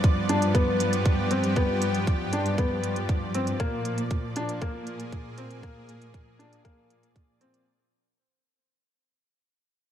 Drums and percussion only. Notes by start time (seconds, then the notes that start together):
0.04 kick, closed hi-hat
0.29 closed hi-hat
0.42 closed hi-hat
0.55 kick, closed hi-hat
0.80 closed hi-hat
0.93 closed hi-hat
1.05 kick, closed hi-hat
1.31 closed hi-hat
1.44 closed hi-hat
1.56 kick, closed hi-hat
1.82 closed hi-hat
1.95 closed hi-hat
2.07 kick, closed hi-hat
2.33 closed hi-hat
2.46 closed hi-hat
2.58 kick, closed hi-hat
2.84 closed hi-hat
2.96 closed hi-hat
3.09 kick, closed hi-hat
3.34 closed hi-hat
3.47 closed hi-hat
3.60 kick, closed hi-hat
3.85 closed hi-hat
3.98 closed hi-hat
4.11 kick, closed hi-hat
4.36 closed hi-hat
4.49 closed hi-hat
4.62 kick, closed hi-hat
4.87 closed hi-hat
5.00 closed hi-hat
5.12 kick, closed hi-hat
5.38 closed hi-hat
5.51 closed hi-hat
5.63 kick, closed hi-hat
5.89 closed hi-hat
6.02 closed hi-hat
6.14 kick, closed hi-hat
6.40 closed hi-hat
6.53 closed hi-hat
6.65 kick, closed hi-hat
6.90 closed hi-hat
7.03 closed hi-hat
7.16 kick, closed hi-hat
7.41 closed hi-hat
7.54 closed hi-hat